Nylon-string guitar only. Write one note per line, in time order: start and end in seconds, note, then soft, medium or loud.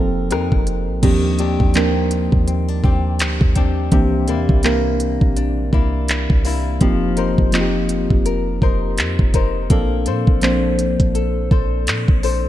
0.00 1.06 F3 medium
0.00 0.30 C4 medium
0.00 0.31 D#4 medium
0.00 0.31 A#4 medium
0.30 1.39 C4 medium
0.30 1.39 D#4 medium
0.30 1.40 A#4 medium
1.03 3.92 D#3 medium
1.39 1.75 C4 medium
1.39 2.47 D4 medium
1.39 2.84 G4 medium
1.75 2.47 C4 medium
2.47 2.68 C4 medium
2.68 2.83 D4 medium
2.84 3.56 C4 medium
2.84 3.56 D4 medium
2.84 3.57 G4 medium
3.56 4.28 C4 medium
3.56 4.29 D4 medium
3.56 6.84 G4 medium
3.92 6.81 C3 medium
4.28 4.64 A#3 medium
4.28 5.35 D4 medium
4.28 5.73 E4 medium
4.64 5.72 A#3 medium
5.37 5.72 D4 medium
5.73 6.45 A#3 medium
5.73 6.44 D4 medium
5.73 6.45 E4 medium
6.45 7.21 A#3 medium
6.45 6.90 D4 medium
6.45 6.90 E4 medium
6.81 10.31 F3 medium
7.17 7.52 D#4 medium
7.17 8.25 A#4 medium
7.17 8.63 C5 medium
7.53 8.61 D#4 medium
8.26 8.62 A#4 medium
8.62 9.33 D#4 medium
8.62 9.34 A#4 medium
8.62 9.35 C5 medium
9.34 9.79 D#4 medium
9.34 10.07 A#4 medium
9.34 10.07 C5 medium
9.70 12.49 A#3 medium
10.06 10.42 D4 medium
10.06 11.13 A4 medium
10.06 11.52 C5 medium
10.42 11.51 D4 medium
11.15 11.50 A4 medium
11.51 12.23 D4 medium
11.51 12.23 A4 medium
11.51 12.24 C5 medium
12.23 12.49 D4 medium
12.23 12.49 A4 medium
12.23 12.49 C5 medium